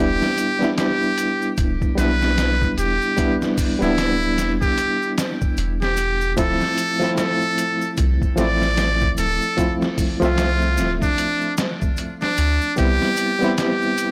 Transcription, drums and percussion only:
0.22 snare soft
0.22 shaker soft
0.38 closed hi-hat medium
0.38 shaker medium
0.62 snare soft
0.62 shaker soft
0.78 snare loud
0.78 closed hi-hat medium
0.78 shaker soft
1.02 shaker soft
1.18 closed hi-hat medium
1.18 shaker medium
1.42 shaker soft
1.57 kick loud
1.57 closed hi-hat medium
1.57 shaker soft
1.82 kick medium
1.82 shaker soft
1.98 snare soft
1.98 closed hi-hat medium
1.98 shaker medium
2.22 snare soft
2.22 shaker soft
2.38 snare loud
2.38 closed hi-hat medium
2.38 shaker medium
2.62 kick medium
2.62 shaker soft
2.78 closed hi-hat medium
2.78 shaker medium
3.02 shaker soft
3.17 kick loud
3.17 closed hi-hat medium
3.17 shaker soft
3.42 snare soft
3.42 shaker soft
3.58 kick medium
3.58 open hi-hat medium
3.58 shaker medium
3.82 snare soft
3.82 shaker soft
3.98 snare loud
3.98 closed hi-hat medium
3.98 shaker soft
4.22 shaker soft
4.38 snare soft
4.38 closed hi-hat medium
4.38 shaker medium
4.62 kick medium
4.62 shaker soft
4.78 closed hi-hat medium
4.78 shaker soft
5.02 shaker soft
5.18 snare loud
5.18 closed hi-hat medium
5.18 shaker medium
5.41 kick medium
5.41 shaker soft
5.57 closed hi-hat medium
5.57 shaker soft
5.82 snare soft
5.82 shaker soft
5.97 closed hi-hat medium
5.97 shaker medium
6.21 shaker soft
6.37 kick loud
6.37 closed hi-hat medium
6.37 shaker medium
6.61 snare soft
6.61 shaker soft
6.78 closed hi-hat medium
6.78 shaker medium
7.01 snare soft
7.01 shaker soft
7.17 snare loud
7.17 closed hi-hat medium
7.17 shaker medium
7.42 shaker soft
7.58 closed hi-hat medium
7.58 shaker medium
7.81 shaker soft
7.97 kick loud
7.97 closed hi-hat medium
7.97 shaker medium
8.22 kick medium
8.22 shaker soft
8.38 snare soft
8.38 closed hi-hat medium
8.38 shaker medium
8.62 snare soft
8.62 shaker soft
8.77 snare loud
8.77 closed hi-hat medium
8.77 shaker soft
9.01 kick medium
9.01 shaker soft
9.17 closed hi-hat medium
9.17 shaker medium
9.42 shaker soft
9.58 kick loud
9.58 closed hi-hat medium
9.58 shaker soft
9.82 snare soft
9.82 shaker soft
9.98 kick medium
9.98 open hi-hat medium
9.98 shaker medium
10.22 snare soft
10.22 shaker soft
10.38 snare loud
10.38 closed hi-hat medium
10.38 shaker medium
10.62 shaker soft
10.77 snare soft
10.77 closed hi-hat medium
10.77 shaker medium
11.02 kick medium
11.02 shaker soft
11.18 closed hi-hat medium
11.18 shaker medium
11.41 shaker soft
11.57 snare loud
11.57 closed hi-hat medium
11.57 shaker medium
11.82 kick medium
11.82 shaker soft
11.97 closed hi-hat medium
11.97 shaker soft
12.21 snare medium
12.21 shaker soft
12.37 closed hi-hat medium
12.37 shaker medium
12.61 shaker soft
12.77 kick loud
12.77 closed hi-hat medium
12.77 shaker soft
13.02 snare soft
13.02 shaker soft
13.17 closed hi-hat medium
13.17 shaker medium
13.42 snare soft
13.42 shaker soft
13.58 snare loud
13.58 closed hi-hat medium
13.58 shaker medium
13.82 shaker soft
13.98 closed hi-hat medium
13.98 shaker medium

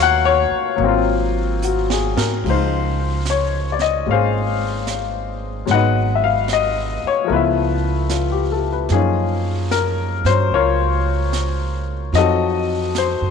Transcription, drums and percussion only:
0.80 brush sweep soft
1.62 hi-hat pedal medium
1.90 snare medium
2.17 snare medium
2.44 brush sweep soft
2.44 kick medium
2.44 ride medium
3.25 snare soft
3.25 hi-hat pedal soft
3.79 snare soft
4.06 brush sweep soft
4.87 snare soft
4.87 hi-hat pedal soft
5.67 brush sweep soft
5.67 snare soft
6.48 snare soft
6.48 hi-hat pedal soft
7.29 brush sweep soft
8.09 snare soft
8.09 hi-hat pedal medium
8.89 brush sweep soft
8.89 snare soft
9.71 snare soft
9.71 hi-hat pedal soft
10.25 snare soft
10.52 brush sweep soft
11.33 snare soft
11.33 hi-hat pedal soft
12.14 brush sweep soft
12.14 snare soft
12.95 snare soft
12.95 hi-hat pedal medium

